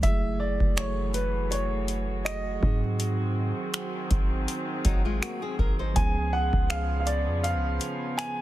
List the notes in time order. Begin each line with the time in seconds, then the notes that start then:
0.01 F#1 E3 F#3 G#3 A3 F#4 G#4 E5, kick, closed hi-hat
0.05 E4 G#4
0.10 A3
0.40 D5
0.60 F#1, kick
0.77 C#5, finger snap, closed hi-hat
1.14 B4, closed hi-hat
1.51 C#5, closed hi-hat
1.88 closed hi-hat
2.25 D#5, finger snap, closed hi-hat
2.60 G#2 D#3 F#3 C4, kick
2.64 D#4 G#4
3.00 closed hi-hat
3.74 finger snap, closed hi-hat
4.11 G#1, kick, closed hi-hat
4.48 closed hi-hat
4.85 G#1 F#3 D#4, kick, closed hi-hat
5.05 G#3 F4
5.22 A#3 F#4, finger snap, closed hi-hat
5.42 C4 G#4
5.59 G#1 A#4, kick
5.79 D#4 C5
5.94 C#2 C#3 F3 B3 G#5, kick, closed hi-hat
5.98 C#4 G#4
6.33 F#5
6.53 C#2, kick
6.70 F5, finger snap, closed hi-hat
7.00 F5
7.07 D5, closed hi-hat
7.27 F2
7.44 F5, closed hi-hat
7.54 C#2
7.81 closed hi-hat
8.18 G#5, finger snap, closed hi-hat